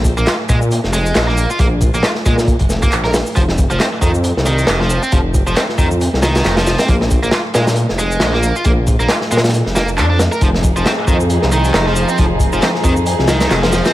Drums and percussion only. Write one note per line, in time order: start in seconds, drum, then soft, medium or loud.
0.04 kick medium
0.04 closed hi-hat medium
0.04 shaker medium
0.17 shaker soft
0.26 snare loud
0.26 clap loud
0.26 closed hi-hat medium
0.26 shaker soft
0.49 kick loud
0.49 closed hi-hat medium
0.49 shaker medium
0.62 shaker soft
0.71 closed hi-hat medium
0.71 shaker soft
0.84 snare soft
0.93 closed hi-hat medium
0.93 shaker medium
1.06 closed hi-hat soft
1.06 shaker soft
1.15 snare loud
1.15 clap loud
1.15 closed hi-hat medium
1.15 shaker soft
1.28 snare soft
1.37 closed hi-hat medium
1.37 shaker medium
1.50 shaker soft
1.59 kick loud
1.59 closed hi-hat medium
1.59 shaker soft
1.81 kick medium
1.81 closed hi-hat medium
1.81 shaker medium
1.94 shaker soft
2.03 snare loud
2.03 clap loud
2.03 closed hi-hat medium
2.03 shaker soft
2.15 snare soft
2.26 kick medium
2.26 closed hi-hat medium
2.26 shaker medium
2.38 snare medium
2.38 shaker soft
2.47 kick medium
2.47 closed hi-hat medium
2.47 shaker soft
2.59 kick medium
2.59 closed hi-hat medium
2.70 snare medium
2.70 shaker medium
2.82 kick medium
2.82 closed hi-hat medium
2.82 shaker soft
2.92 clap loud
2.92 closed hi-hat medium
2.92 shaker soft
3.04 snare soft
3.14 snare loud
3.14 open hi-hat medium
3.14 shaker medium
3.26 shaker soft
3.36 kick loud
3.36 closed hi-hat loud
3.36 shaker soft
3.49 snare medium
3.58 kick loud
3.58 closed hi-hat medium
3.58 shaker medium
3.70 shaker soft
3.80 snare loud
3.80 clap loud
3.80 closed hi-hat medium
3.80 shaker soft
4.02 kick medium
4.02 closed hi-hat medium
4.02 shaker medium
4.14 shaker soft
4.24 closed hi-hat medium
4.24 shaker soft
4.37 snare soft
4.45 closed hi-hat medium
4.45 shaker medium
4.58 closed hi-hat soft
4.58 shaker soft
4.67 snare loud
4.67 clap loud
4.67 closed hi-hat medium
4.67 shaker soft
4.81 snare soft
4.89 closed hi-hat medium
4.89 shaker medium
5.03 shaker soft
5.12 kick loud
5.12 closed hi-hat loud
5.12 shaker soft
5.34 kick loud
5.34 closed hi-hat medium
5.34 shaker medium
5.47 shaker soft
5.56 snare loud
5.56 clap loud
5.56 closed hi-hat loud
5.56 shaker soft
5.69 snare soft
5.78 kick medium
5.78 closed hi-hat medium
5.78 shaker medium
5.91 shaker soft
6.01 closed hi-hat medium
6.01 shaker soft
6.14 snare soft
6.23 snare loud
6.23 closed hi-hat medium
6.23 shaker medium
6.35 snare loud
6.35 closed hi-hat medium
6.35 shaker soft
6.44 snare loud
6.44 clap loud
6.44 closed hi-hat medium
6.44 shaker soft
6.57 snare loud
6.57 closed hi-hat medium
6.66 snare loud
6.66 closed hi-hat medium
6.66 shaker medium
6.78 snare loud
6.78 closed hi-hat medium
6.78 shaker soft
6.88 kick loud
6.88 closed hi-hat medium
6.88 shaker soft
7.01 snare medium
7.11 kick medium
7.11 closed hi-hat medium
7.11 shaker medium
7.23 shaker soft
7.31 snare loud
7.31 clap loud
7.31 closed hi-hat medium
7.31 shaker soft
7.54 snare loud
7.54 closed hi-hat medium
7.54 shaker medium
7.67 snare loud
7.67 closed hi-hat medium
7.67 shaker soft
7.76 closed hi-hat medium
7.76 shaker soft
7.89 snare soft
7.99 closed hi-hat medium
7.99 shaker medium
8.10 closed hi-hat soft
8.10 shaker soft
8.20 snare loud
8.20 clap loud
8.20 closed hi-hat medium
8.20 shaker soft
8.34 snare soft
8.43 closed hi-hat medium
8.43 shaker medium
8.56 shaker soft
8.64 kick loud
8.64 closed hi-hat medium
8.64 shaker soft
8.87 kick medium
8.87 closed hi-hat medium
8.87 shaker medium
9.00 shaker soft
9.09 snare loud
9.09 clap loud
9.09 closed hi-hat medium
9.09 shaker soft
9.21 snare soft
9.31 closed hi-hat medium
9.31 shaker medium
9.37 snare medium
9.37 closed hi-hat medium
9.44 snare medium
9.44 closed hi-hat medium
9.44 shaker soft
9.48 snare medium
9.48 closed hi-hat medium
9.54 closed hi-hat medium
9.54 shaker soft
9.66 snare soft
9.76 snare loud
9.76 closed hi-hat medium
9.76 shaker medium
9.88 shaker soft
9.98 clap loud
9.98 closed hi-hat medium
9.98 shaker soft
10.19 snare loud
10.19 closed hi-hat medium
10.19 shaker medium
10.32 shaker soft
10.41 kick loud
10.41 closed hi-hat medium
10.41 shaker soft
10.54 snare medium
10.63 kick loud
10.63 closed hi-hat medium
10.63 shaker medium
10.76 shaker soft
10.86 snare loud
10.86 clap loud
10.86 closed hi-hat medium
10.86 shaker soft
11.07 kick medium
11.07 closed hi-hat medium
11.07 shaker medium
11.20 shaker soft
11.30 closed hi-hat medium
11.30 shaker soft
11.42 snare soft
11.52 closed hi-hat medium
11.52 shaker medium
11.64 closed hi-hat soft
11.64 shaker soft
11.74 snare loud
11.74 clap loud
11.74 closed hi-hat medium
11.74 shaker soft
11.87 snare soft
11.96 closed hi-hat medium
11.96 shaker medium
12.09 shaker soft
12.18 kick loud
12.18 closed hi-hat medium
12.18 shaker soft
12.39 kick loud
12.39 closed hi-hat medium
12.39 shaker medium
12.53 shaker soft
12.62 snare loud
12.62 clap loud
12.62 closed hi-hat medium
12.62 shaker soft
12.75 snare soft
12.84 kick medium
12.84 closed hi-hat medium
12.84 shaker medium
12.97 shaker soft
13.06 closed hi-hat medium
13.06 shaker soft
13.19 snare soft
13.27 snare loud
13.27 closed hi-hat medium
13.27 shaker medium
13.40 snare loud
13.40 closed hi-hat medium
13.40 shaker soft
13.50 snare loud
13.50 clap loud
13.50 closed hi-hat medium
13.50 shaker soft
13.63 snare loud
13.63 closed hi-hat medium
13.72 snare loud
13.72 closed hi-hat medium
13.72 shaker medium
13.85 snare loud
13.85 closed hi-hat medium
13.85 shaker soft